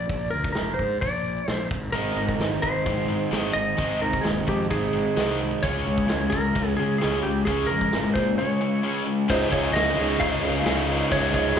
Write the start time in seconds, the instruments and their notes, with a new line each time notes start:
Already playing: electric slide guitar D5
0.09 fingered electric bass A#1, kick, open hi-hat
0.30 fingered electric bass D2, electric slide guitar A#4
0.44 kick
0.52 fingered electric bass F1, electric slide guitar A#4, snare, open hi-hat
0.74 electric slide guitar C5
0.79 fingered electric bass G#2, kick
1.01 fingered electric bass A#1, electric slide guitar D5, kick, open hi-hat
1.47 fingered electric bass A#1, electric slide guitar C5, snare, open hi-hat
1.71 fingered electric bass G#1, kick
1.92 fingered electric bass G#1, distorted electric guitar G#2 D#3 G#3, overdriven electric guitar C4 D#4, electric slide guitar A#4, open hi-hat
2.16 fingered electric bass G#1, distorted electric guitar G#2 D#3
2.29 kick
2.38 fingered electric bass G#1, distorted electric guitar G#2, snare, open hi-hat
2.42 distorted electric guitar D#3
2.62 fingered electric bass G#1, distorted electric guitar G#2 D#3, electric slide guitar C5, kick
2.86 fingered electric bass G#1, distorted electric guitar G#2 D#3, overdriven electric guitar G#3 C4 D#4, kick, open hi-hat
3.07 fingered electric bass G#2, distorted electric guitar G#2 D#3
3.31 fingered electric bass G#1, distorted electric guitar G#2 D#3 G#3, snare, open hi-hat
3.53 fingered electric bass G#1, distorted electric guitar G#2 D#3, electric slide guitar D#5
3.77 fingered electric bass G#1, distorted electric guitar G#2 D#3 G#3, overdriven electric guitar C4 D#4, kick, open hi-hat
4.01 fingered electric bass C2, distorted electric guitar G#2 D#3, electric slide guitar A#4
4.13 kick
4.21 fingered electric bass D#1, distorted electric guitar G#2 D#3, electric slide guitar G#4, snare, open hi-hat
4.47 fingered electric bass F2, distorted electric guitar G#2 D#3, electric slide guitar G4, kick
4.70 fingered electric bass G#1, distorted electric guitar G#2 D#3, overdriven electric guitar G#3 C4 D#4, electric slide guitar G#4, kick, open hi-hat
4.93 distorted electric guitar G#2 D#3
5.17 fingered electric bass C2, distorted electric guitar G#2 D#3 G#3, snare, open hi-hat
5.40 distorted electric guitar G#2 D#3
5.63 fingered electric bass C#2, distorted electric guitar C#3 G#3 C#4, overdriven electric guitar F4 G#4, electric slide guitar C#5, kick, open hi-hat
5.86 fingered electric bass C#2, distorted electric guitar C#3 G#3
5.98 kick
6.08 fingered electric bass C#2, distorted electric guitar C#3 G#3, snare, open hi-hat
6.30 fingered electric bass C#2, distorted electric guitar C#3 G#3, electric slide guitar A#4, kick
6.55 fingered electric bass C#2, distorted electric guitar C#3 G#3, overdriven electric guitar C#4 F4 G#4, kick, open hi-hat
6.77 fingered electric bass C#3, distorted electric guitar C#3 G#3, electric slide guitar G#4
6.98 distorted electric guitar C#3 G#3, electric slide guitar G#4, snare, open hi-hat
7.03 fingered electric bass C#2, distorted electric guitar C#4
7.23 fingered electric bass C#2, distorted electric guitar C#3 G#3, electric slide guitar G4
7.45 fingered electric bass C#2, distorted electric guitar C#3 G#3 C#4, overdriven electric guitar F4, electric slide guitar G#4, kick, open hi-hat
7.49 overdriven electric guitar G#4
7.67 distorted electric guitar C#3, electric slide guitar A#4
7.71 fingered electric bass F2, distorted electric guitar G#3
7.81 kick
7.93 fingered electric bass G#1, distorted electric guitar C#3 G#3, snare, open hi-hat
8.14 fingered electric bass A#2, distorted electric guitar C#3 G#3, electric slide guitar C5, kick
8.38 distorted electric guitar C#3 G#3, overdriven electric guitar C#4 F4 G#4, electric slide guitar C#5
8.61 distorted electric guitar C#3 G#3
8.83 distorted electric guitar C#3 G#3 C#4
9.06 distorted electric guitar C#3 G#3
9.28 fingered electric bass C#2, distorted electric guitar C#3 G#3 C#4 D#4 G#4, steel-string acoustic guitar C#3 F3 G#3 D#4 F4, reed electric piano F4 G#4 C#5 D#5, electric slide guitar C5, kick, crash, cowbell
9.51 fingered electric bass C#2, distorted electric guitar C#4 D#4 G#4, steel-string acoustic guitar D#4 F4, reed electric piano F4 G#4 C#5 F5, electric slide guitar C#5, kick, cowbell, crash
9.55 steel-string acoustic guitar G#3
9.73 fingered electric bass C#2, steel-string acoustic guitar F3 G#3 D#4 F4, distorted electric guitar G#3 C#4 D#4 G#4, electric slide guitar D#5, snare, cowbell, crash
9.97 fingered electric bass C#2, overdriven electric guitar C#3 G#3, steel-string acoustic guitar G#3 D#4 F4, distorted electric guitar C#4 D#4 G#4, crash
10.20 fingered electric bass C#2, electric slide guitar F5, kick, cowbell, crash
10.42 fingered electric bass C#2, distorted electric guitar C#4 D#4 G#4, reed electric piano F4 G#4 C#5 D#5, cowbell, crash
10.64 fingered electric bass C#2, distorted electric guitar C#3 G#3 C#4 D#4 G#4, steel-string acoustic guitar F3 G#3 D#4, snare, cowbell, crash
10.69 steel-string acoustic guitar F4
10.88 steel-string acoustic guitar G#3 D#4 F4, crash
11.10 fingered electric bass C#2, steel-string acoustic guitar C#3 F3 G#3 D#4 F4, distorted electric guitar C#3 G#3 C#4 D#4 G#4, reed electric piano F4 G#4 C#5 D#5, electric slide guitar C#5, kick, cowbell, crash
11.32 fingered electric bass C#2, steel-string acoustic guitar G#3 D#4 F4, distorted electric guitar C#4 D#4 G#4, reed electric piano F4 G#4 C#5 D#5, electric slide guitar C#5, kick, cowbell, crash
11.54 fingered electric bass C#2, steel-string acoustic guitar F3 G#3, distorted electric guitar G#3 C#4 D#4